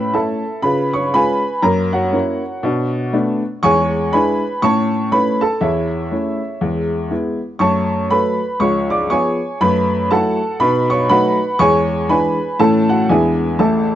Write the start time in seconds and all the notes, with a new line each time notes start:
Already playing: A2 C#4 B4 E5 B5
0.14 A3 C#4 E4 A4 E5 A5
0.62 C#3 F4 B4 B5
0.93 C#5 C#6
1.14 G#3 C#4 F4 B4 G#5 B5
1.62 F#2 A#3 A#4 A#5
1.93 F#4 C#5 F#5
2.13 A#3 C#4 E4
2.63 B2 D4
3.13 A3 B3 D4
3.63 E2 G#3 C#5 G#5 C#6
4.13 G#3 D4 E4 B4 G#5 B5
4.62 A2 C#4 C#5 A5 C#6
5.12 A3 C#4 E4 B4 B5
5.41 A4 A5
5.61 E2 E4 C#5 E5
6.11 A3 C#4 E4
6.61 E2 G#3
7.10 G#3 B3 E4
7.59 F#2 A3 C#5 A5 C#6
8.10 F#3 A3 A4 B4 B5
8.60 C#2 F3 C#5 C#6
8.90 D5 D6
9.10 F3 B3 G#4 C#5 G#5 C#6
9.61 F#2 A3 B4 B5
10.10 F#3 A3 E4 A4 F#5 A5
10.60 B2 D#4 B4 B5
10.90 C#5 C#6
11.09 F#3 A3 D#4 B4 F#5 B5
11.59 E2 G#3 C#5 G#5 C#6
12.09 E3 G#3 D4 B4 G#5 B5
12.59 A2 E3 A3 C#4 A4 A5
12.89 F#4 F#5
13.09 E2 E3 G#3 B3 D4 G#4 E5 G#5
13.59 A1 A2 A4 E5 A5